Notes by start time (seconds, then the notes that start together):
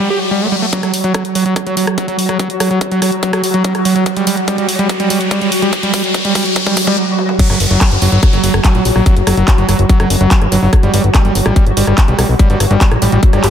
Already playing: F#3 F#4, riser
0.10 G4
0.31 G3
0.42 A3
0.52 G3
0.62 A3
0.73 F#3 F#4, kick, closed hi-hat, riser
0.83 F#3, cross-stick, closed hi-hat
0.94 open hi-hat
1.04 F#3, closed hi-hat
1.14 F#3, kick, cross-stick, closed hi-hat
1.25 closed hi-hat
1.35 F#3, open hi-hat
1.46 F#3, closed hi-hat
1.56 kick, cross-stick, closed hi-hat
1.67 F#3, closed hi-hat
1.77 F#3, open hi-hat
1.87 cross-stick, closed hi-hat
1.98 F#3, kick, closed hi-hat
2.08 F#3, closed hi-hat
2.19 open hi-hat
2.29 F#3, cross-stick, closed hi-hat
2.39 F#3, kick, closed hi-hat
2.50 closed hi-hat
2.60 F#3, cross-stick, open hi-hat
2.71 F#3, closed hi-hat
2.81 kick, closed hi-hat
2.92 F#3, closed hi-hat
3.02 F#3, cross-stick, open hi-hat
3.12 closed hi-hat
3.23 F#3, kick, closed hi-hat
3.33 F#3, cross-stick, closed hi-hat
3.44 open hi-hat
3.54 F#3, closed hi-hat
3.64 F#3, kick, closed hi-hat
3.75 cross-stick, closed hi-hat
3.85 F#3, open hi-hat
3.96 F#3, closed hi-hat
4.06 kick, closed hi-hat
4.17 G3, closed hi-hat
4.27 G3, open hi-hat
4.37 closed hi-hat
4.48 G3, kick, closed hi-hat
4.58 G3, closed hi-hat
4.69 open hi-hat
4.79 G3, closed hi-hat
4.89 kick, closed hi-hat
5.00 G3, closed hi-hat
5.10 G3, open hi-hat
5.21 closed hi-hat
5.31 G3, kick, closed hi-hat
5.42 G3, closed hi-hat
5.52 open hi-hat
5.62 G3, closed hi-hat
5.73 kick, closed hi-hat
5.83 G3, closed hi-hat
5.94 G3, kick, open hi-hat
6.04 closed hi-hat
6.14 kick, closed hi-hat
6.25 G3, closed hi-hat
6.35 G3, kick, open hi-hat
6.46 closed hi-hat
6.56 kick, closed hi-hat
6.66 G3, kick, closed hi-hat
6.77 kick, open hi-hat
6.87 G3, kick, closed hi-hat
7.19 high tom
7.29 mid tom
7.39 F#3 F#4, kick, closed hi-hat, crash, downlifter
7.50 F#1 F#3, cross-stick, closed hi-hat
7.60 F#1, open hi-hat
7.71 F#1 F#3, closed hi-hat
7.81 F#3, kick, cross-stick, clap, closed hi-hat
7.91 F#1, closed hi-hat
8.02 F#1 F#3, open hi-hat
8.12 G1 F#3, closed hi-hat
8.23 kick, cross-stick, closed hi-hat
8.33 F#1 F#3, closed hi-hat
8.44 F#1 F#3, open hi-hat
8.54 F#1, cross-stick, closed hi-hat
8.64 F#3, kick, clap, closed hi-hat
8.75 A#1 F#3, closed hi-hat
8.85 A#1, open hi-hat
8.96 A#1 F#3, cross-stick
9.06 F#3, kick, closed hi-hat
9.16 F#1, closed hi-hat
9.27 F#1 F#3, cross-stick, open hi-hat
9.37 F#1 F#3, closed hi-hat
9.48 kick, clap, closed hi-hat
9.58 F#1 F#3, closed hi-hat
9.69 F#1 F#3, cross-stick, open hi-hat
9.79 F#1, closed hi-hat
9.89 F#3, kick, closed hi-hat
10.00 F#1 F#3, cross-stick, closed hi-hat
10.10 F#1, open hi-hat
10.21 F#1 F#3, closed hi-hat
10.31 F#3, kick, clap, closed hi-hat
10.42 G1, cross-stick, closed hi-hat
10.52 G1 F#3, open hi-hat
10.62 G1 F#3
10.73 kick, cross-stick, closed hi-hat
10.83 G1 G3, closed hi-hat
10.94 G1 G3, open hi-hat
11.04 G1
11.14 G3, kick, cross-stick, clap, closed hi-hat
11.25 G1 G3, closed hi-hat
11.35 G1, open hi-hat
11.46 A1 G3, cross-stick
11.56 G3, kick, closed hi-hat
11.67 G1, closed hi-hat
11.77 G1 G3, open hi-hat
11.87 G1 G3, cross-stick, closed hi-hat
11.98 kick, clap, closed hi-hat
12.08 B1 G3, closed hi-hat
12.19 B1 G3, cross-stick, open hi-hat
12.29 B1
12.39 G3, kick, closed hi-hat
12.50 G1 G3, closed hi-hat
12.60 G1, cross-stick, open hi-hat
12.71 G1 G3, closed hi-hat
12.81 G3, kick, clap, closed hi-hat
12.91 A1, cross-stick, closed hi-hat
13.02 A1 G3, open hi-hat
13.12 A1 G3, closed hi-hat
13.23 kick, closed hi-hat
13.33 G1 G3, cross-stick, closed hi-hat
13.44 G1 G4, clap, open hi-hat